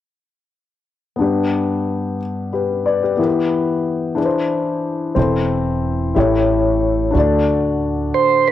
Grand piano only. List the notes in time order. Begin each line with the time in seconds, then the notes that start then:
1.16 G2 B3 D4
1.21 G4 B4
2.53 G4 B4
2.86 B4 D5
3.03 G4 B4
3.17 E3 B3 E4 G4 A#4
3.27 B4
4.15 E3 D4 E4 G#4 B4
4.25 C5
5.15 E3 C4 E4 A4
5.19 C5
6.15 A2 E4 G4 A4 C#5
7.11 D3 D4 F#4
7.16 A4 D5